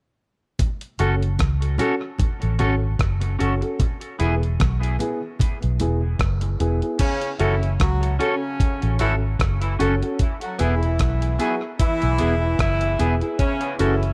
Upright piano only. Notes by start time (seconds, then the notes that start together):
0.99 C#4 F#4 A4
1.79 C#4 F#4 A4
2.59 C#4 F#4 A4
3.39 C#4 F#4 A4
3.62 C#4 F#4 A4
4.19 B3 E4 G#4
4.99 B3 E4 G#4
5.80 B3 E4 G#4
6.59 B3 E4 G#4
6.82 B3 E4 G#4
7.39 C#4 F#4 A4
8.19 C#4 F#4 A4
8.99 C#4 F#4 A4
9.79 C#4 F#4 A4
10.01 C#4 F#4 A4
10.59 B3 E4 G#4
11.39 B3 E4 G#4
12.19 B3 E4 G#4
12.99 B3 E4 G#4
13.21 B3 E4 G#4
13.79 C#4 F#4 A4